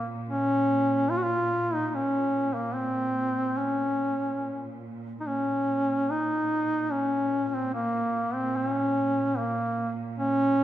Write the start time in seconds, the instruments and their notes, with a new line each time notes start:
Already playing: string section A#2
0.29 duduk C#4
1.10 duduk F4
1.17 duduk F#4
1.23 duduk F4
1.74 duduk D#4
1.88 duduk D#4
1.95 duduk C#4
2.54 duduk A#3
2.75 duduk C4
3.58 duduk C#4
5.20 string section A#2, duduk D#4
5.27 duduk C#4
6.10 duduk D#4
6.92 duduk C#4
7.49 duduk C#4
7.55 duduk C4
7.74 duduk A#3
8.35 duduk C4
8.56 duduk C#4
9.38 duduk A#3
10.19 duduk C#4